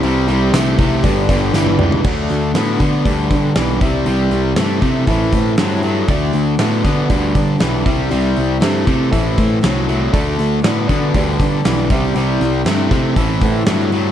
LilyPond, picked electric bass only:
\new Staff \with { instrumentName = "Picked electric bass" } { \clef bass \time 4/4 \key c \lydian \tempo 4 = 119 c,8 c,8 c,8 c,8 g,,8 g,,8 g,,8 cis,8 | d,8 d,8 a,8 d8 d,8 d8 b,,8 c,8 | c,8 c,8 g,8 c8 a,,8 a,8 g,4 | d,8 d,8 a,8 d8 d,8 d8 b,,8 c,8 |
c,8 c,8 g,8 c8 a,,8 a,8 c,4 | d,8 d,8 a,8 d8 d,8 d8 b,,8 c,8 | c,8 c,8 g,8 c8 a,,8 a,8 g,4 | }